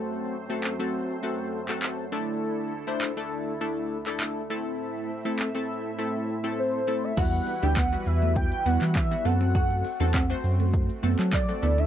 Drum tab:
CC |----------------|----------------|----------------|x---------------|
HH |----------------|----------------|----------------|-xox-xox-xox-xox|
SH |----------------|----------------|----------------|xxxxxxxxxxxxxxxx|
CP |----x------xx---|----x------xx---|----x-----------|----x------xx---|
BD |----------------|----------------|----------------|o---o---o---o---|

CC |----------------|
HH |-xox-xox-xox-xox|
SH |xxxxxxxxxxxxxxxx|
CP |----x------xx---|
BD |o---o---o---o---|